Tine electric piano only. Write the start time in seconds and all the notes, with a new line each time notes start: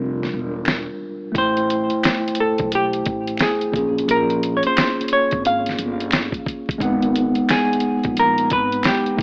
Already playing: G3 D4 F4 A#4
1.32 A3 E4
1.36 C5 G5
3.72 A#3 F4
3.77 C#4 G#4
6.78 G#3 D#4
6.82 B3 F#5
9.17 A3 E4